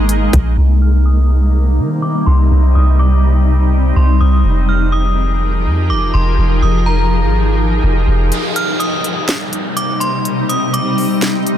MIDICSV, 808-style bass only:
0, 0, Header, 1, 2, 480
1, 0, Start_track
1, 0, Key_signature, -3, "minor"
1, 0, Tempo, 483871
1, 570, Time_signature, 4, 2, 24, 8
1, 11485, End_track
2, 0, Start_track
2, 0, Title_t, "808-style bass"
2, 0, Program_c, 0, 38
2, 0, Note_on_c, 0, 32, 97
2, 291, Note_off_c, 0, 32, 0
2, 331, Note_on_c, 0, 34, 102
2, 561, Note_off_c, 0, 34, 0
2, 571, Note_on_c, 0, 36, 108
2, 1770, Note_on_c, 0, 51, 100
2, 1785, Note_off_c, 0, 36, 0
2, 2226, Note_off_c, 0, 51, 0
2, 2250, Note_on_c, 0, 36, 102
2, 2481, Note_off_c, 0, 36, 0
2, 2491, Note_on_c, 0, 36, 104
2, 2721, Note_off_c, 0, 36, 0
2, 2731, Note_on_c, 0, 36, 98
2, 3891, Note_off_c, 0, 36, 0
2, 3930, Note_on_c, 0, 36, 106
2, 4161, Note_off_c, 0, 36, 0
2, 4171, Note_on_c, 0, 36, 100
2, 4401, Note_off_c, 0, 36, 0
2, 4410, Note_on_c, 0, 29, 99
2, 5610, Note_on_c, 0, 41, 97
2, 5625, Note_off_c, 0, 29, 0
2, 5851, Note_on_c, 0, 29, 103
2, 5866, Note_off_c, 0, 41, 0
2, 6079, Note_off_c, 0, 29, 0
2, 6091, Note_on_c, 0, 29, 100
2, 6321, Note_off_c, 0, 29, 0
2, 6330, Note_on_c, 0, 29, 109
2, 6561, Note_off_c, 0, 29, 0
2, 6569, Note_on_c, 0, 29, 102
2, 7170, Note_on_c, 0, 32, 92
2, 7185, Note_off_c, 0, 29, 0
2, 7740, Note_off_c, 0, 32, 0
2, 7770, Note_on_c, 0, 29, 113
2, 8001, Note_off_c, 0, 29, 0
2, 8009, Note_on_c, 0, 29, 104
2, 8240, Note_off_c, 0, 29, 0
2, 11485, End_track
0, 0, End_of_file